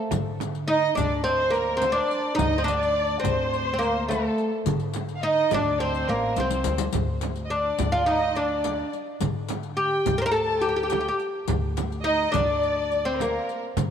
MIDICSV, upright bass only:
0, 0, Header, 1, 2, 480
1, 0, Start_track
1, 0, Tempo, 568720
1, 96, Time_signature, 4, 2, 24, 8
1, 11736, End_track
2, 0, Start_track
2, 0, Title_t, "Upright bass"
2, 0, Program_c, 0, 32
2, 102, Note_on_c, 0, 50, 94
2, 744, Note_off_c, 0, 50, 0
2, 816, Note_on_c, 0, 38, 75
2, 1675, Note_off_c, 0, 38, 0
2, 2020, Note_on_c, 0, 38, 90
2, 2662, Note_off_c, 0, 38, 0
2, 2737, Note_on_c, 0, 38, 79
2, 3595, Note_off_c, 0, 38, 0
2, 3938, Note_on_c, 0, 50, 89
2, 4581, Note_off_c, 0, 50, 0
2, 4664, Note_on_c, 0, 38, 78
2, 5089, Note_off_c, 0, 38, 0
2, 5136, Note_on_c, 0, 33, 82
2, 5351, Note_off_c, 0, 33, 0
2, 5374, Note_on_c, 0, 36, 82
2, 5590, Note_off_c, 0, 36, 0
2, 5616, Note_on_c, 0, 38, 77
2, 5831, Note_off_c, 0, 38, 0
2, 5856, Note_on_c, 0, 38, 86
2, 6500, Note_off_c, 0, 38, 0
2, 6576, Note_on_c, 0, 38, 73
2, 7435, Note_off_c, 0, 38, 0
2, 7780, Note_on_c, 0, 50, 90
2, 8422, Note_off_c, 0, 50, 0
2, 8493, Note_on_c, 0, 38, 69
2, 9353, Note_off_c, 0, 38, 0
2, 9691, Note_on_c, 0, 38, 84
2, 10337, Note_off_c, 0, 38, 0
2, 10416, Note_on_c, 0, 38, 81
2, 11274, Note_off_c, 0, 38, 0
2, 11620, Note_on_c, 0, 50, 86
2, 11736, Note_off_c, 0, 50, 0
2, 11736, End_track
0, 0, End_of_file